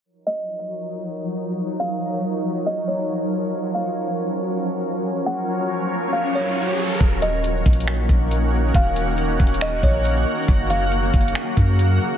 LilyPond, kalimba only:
\new Staff \with { instrumentName = "Kalimba" } { \time 4/4 \key ees \minor \tempo 4 = 138 r8 ees''2.~ ees''8 | f''4 r4 ees''8 des''4. | r8 f''2.~ f''8 | ges''4 r4 f''8 des''4. |
r8 ees''2.~ ees''8 | f''4 r4 ees''8 des''4. | r8 f''2.~ f''8 | }